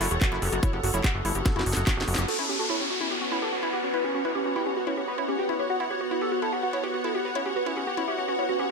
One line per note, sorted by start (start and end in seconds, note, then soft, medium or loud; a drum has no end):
0.00 0.08 F#1 loud
0.00 2.27 B3 medium
0.00 0.05 E4 loud
0.00 2.27 F#4 medium
0.00 0.06 F#4 medium
0.00 2.30 A4 medium
0.00 2.28 C#5 medium
0.00 2.28 F#5 medium
0.00 clap soft
0.00 open hi-hat loud
0.11 0.18 E1 medium
0.11 0.15 G4 medium
0.11 0.17 C#5 medium
0.11 closed hi-hat medium
0.21 0.24 F#4 medium
0.21 0.27 F#4 medium
0.21 kick loud
0.21 clap loud
0.21 closed hi-hat medium
0.32 0.39 F#1 medium
0.32 0.36 E4 loud
0.32 0.37 F#4 medium
0.42 0.49 F#1 loud
0.42 0.46 G4 medium
0.42 0.48 A4 medium
0.42 open hi-hat medium
0.52 0.60 F#1 loud
0.52 0.55 F#4 medium
0.52 0.58 F#4 medium
0.52 closed hi-hat medium
0.63 0.67 E4 loud
0.63 0.68 C#5 loud
0.63 kick loud
0.63 closed hi-hat medium
0.73 0.81 F#1 medium
0.73 0.79 F#4 medium
0.73 0.77 G4 medium
0.84 0.91 F#1 loud
0.84 0.86 F#4 medium
0.84 0.89 F#4 medium
0.84 open hi-hat loud
0.94 1.01 F#1 loud
0.94 0.98 E4 loud
0.94 0.99 C#5 medium
0.94 closed hi-hat medium
1.04 1.10 F#4 medium
1.04 1.08 G4 medium
1.04 kick loud
1.04 clap loud
1.04 closed hi-hat medium
1.15 1.22 F#1 medium
1.15 1.17 F#4 medium
1.15 1.20 F#4 medium
1.25 1.32 G1 loud
1.25 1.29 E4 loud
1.25 1.30 A4 medium
1.25 open hi-hat medium
1.35 1.43 F#1 medium
1.35 1.41 F#4 medium
1.35 1.39 G4 medium
1.35 closed hi-hat medium
1.46 1.48 F#4 medium
1.46 1.51 A4 medium
1.46 kick loud
1.46 snare medium
1.46 closed hi-hat medium
1.56 1.63 F#1 medium
1.56 1.60 E4 loud
1.56 1.61 F#4 medium
1.56 snare medium
1.66 1.74 F#1 loud
1.66 1.70 F#4 medium
1.66 1.72 F#4 medium
1.66 open hi-hat loud
1.73 1.84 F#1 medium
1.73 1.82 F#4 loud
1.73 1.81 A4 medium
1.73 snare medium
1.73 closed hi-hat medium
1.87 1.91 F#4 medium
1.87 1.92 F#4 medium
1.87 kick loud
1.87 snare medium
1.87 clap loud
1.87 closed hi-hat medium
1.97 2.05 F#1 medium
1.97 2.01 F#4 medium
1.97 2.03 F#4 medium
1.97 snare loud
2.08 2.15 F#1 loud
2.08 2.13 F#4 medium
2.08 2.10 G4 medium
2.08 open hi-hat medium
2.15 2.25 F#1 medium
2.15 2.23 F#4 medium
2.15 2.20 G4 medium
2.15 snare loud
2.15 closed hi-hat medium
2.28 8.71 B3 medium
2.28 2.31 F#4 medium
2.28 8.71 F#4 medium
2.28 2.34 A4 loud
2.28 8.71 B4 medium
2.28 crash medium
2.28 downlifter medium
2.39 2.44 C#4 medium
2.39 2.43 E4 loud
2.49 2.54 C#4 medium
2.49 2.53 G4 medium
2.59 2.62 F#4 medium
2.59 2.65 A4 medium
2.59 8.71 C#5 medium
2.70 2.75 C#4 medium
2.70 2.74 E4 loud
2.80 2.85 C#4 medium
2.80 2.84 G4 medium
2.90 2.93 F#4 medium
2.90 2.96 F#4 medium
3.01 3.06 C#4 medium
3.01 3.05 E4 loud
3.11 3.17 F#4 medium
3.11 3.15 G4 medium
3.21 3.27 C#4 medium
3.21 3.24 F#4 medium
3.32 3.37 C#4 medium
3.32 3.36 E4 loud
3.42 3.46 G4 medium
3.42 3.48 A4 loud
3.52 3.58 C#4 medium
3.52 3.55 F#4 medium
3.59 3.68 C#4 medium
3.59 3.67 E4 loud
3.59 8.71 F#5 medium
3.73 3.79 F#4 medium
3.73 3.77 G4 medium
3.84 3.89 C#4 medium
3.84 3.86 F#4 medium
3.94 3.98 E4 loud
3.94 3.99 B4 loud
4.04 4.10 C#4 medium
4.04 4.08 G4 medium
4.15 4.20 C#4 medium
4.15 4.17 F#4 medium
4.25 4.29 E4 loud
4.25 4.30 B4 medium
4.35 4.41 C#4 medium
4.35 4.39 G4 medium
4.46 4.51 C#4 medium
4.46 4.48 F#4 medium
4.56 4.60 E4 loud
4.56 4.61 G4 medium
4.66 4.72 C#4 medium
4.66 4.70 G4 medium
4.77 4.79 F#4 medium
4.77 4.82 F#4 medium
4.87 4.92 C#4 medium
4.87 4.91 E4 loud
4.97 5.03 C#4 medium
4.97 5.01 G4 medium
5.08 5.10 F#4 medium
5.08 5.13 B4 medium
5.18 5.23 C#4 medium
5.18 5.22 E4 loud
5.28 5.34 C#4 medium
5.28 5.32 G4 medium
5.39 5.41 F#4 medium
5.39 5.44 G4 medium
5.49 5.54 C#4 medium
5.49 5.53 E4 loud
5.59 5.63 G4 medium
5.59 5.65 C#5 loud
5.70 5.72 F#4 medium
5.70 5.75 F#4 medium
5.80 5.84 E4 loud
5.80 5.85 F#4 medium
5.90 5.94 G4 medium
5.90 5.96 C#5 medium
6.01 6.03 F#4 medium
6.01 6.06 F#4 medium
6.11 6.15 E4 medium
6.11 6.17 F#4 medium
6.21 6.25 G4 medium
6.21 6.27 A4 medium
6.32 6.34 F#4 medium
6.32 6.37 F#4 medium
6.42 6.46 E4 loud
6.42 6.48 A4 medium
6.53 6.58 F#4 medium
6.53 6.56 G4 medium
6.63 6.65 F#4 medium
6.63 6.68 F#4 medium
6.73 6.77 E4 loud
6.73 6.79 C#5 medium
6.84 6.89 F#4 medium
6.84 6.87 G4 medium
6.94 6.96 F#4 medium
6.94 6.99 F#4 medium
7.04 7.08 E4 loud
7.04 7.10 A4 medium
7.15 7.20 F#4 medium
7.15 7.18 G4 medium
7.25 7.27 F#4 medium
7.25 7.30 B4 loud
7.35 7.41 C#4 medium
7.35 7.39 E4 loud
7.46 7.51 C#4 medium
7.46 7.50 G4 medium
7.56 7.58 F#4 medium
7.56 7.61 B4 medium
7.66 7.72 C#4 medium
7.66 7.70 E4 loud
7.77 7.82 C#4 medium
7.77 7.81 G4 medium
7.87 7.89 F#4 medium
7.87 7.92 G4 medium
7.97 8.03 C#4 medium
7.97 8.01 E4 loud
8.08 8.13 E4 medium
8.08 8.12 G4 medium
8.08 swell medium
8.18 8.23 C#4 medium
8.18 8.20 F#4 medium
8.28 8.34 C#4 medium
8.28 8.31 F#4 medium
8.39 8.44 E4 medium
8.39 8.41 C#5 medium
8.49 8.54 C#4 medium
8.49 8.53 F#4 medium
8.59 8.65 C#4 medium
8.59 8.63 G4 medium